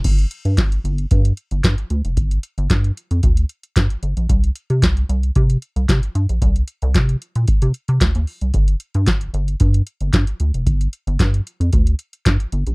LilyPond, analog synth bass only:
\new Staff \with { instrumentName = "Analog synth bass" } { \clef bass \time 4/4 \key g \minor \tempo 4 = 113 g,,8 r16 g,16 g,,8 g,,8 g,8 r16 g,,16 g,16 r16 d,16 f,,16 | g,,8 r16 g,,16 g,8 r16 f,16 d,8 r8 g,16 r16 g,,16 bes,,16 | c,8 r16 c16 c,8 c,8 c8 r16 c,16 c16 r16 g,16 bes,,16 | c,8 r16 c,16 c8 r16 bes,16 r16 c16 r16 c16 d,16 ees,16 r16 c,16 |
g,,8 r16 g,16 g,,8 g,,8 g,8 r16 g,,16 g,16 r16 d,16 f,,16 | g,,8 r16 g,,16 g,8 r16 f,16 d,8 r8 g,16 r16 g,,16 bes,,16 | }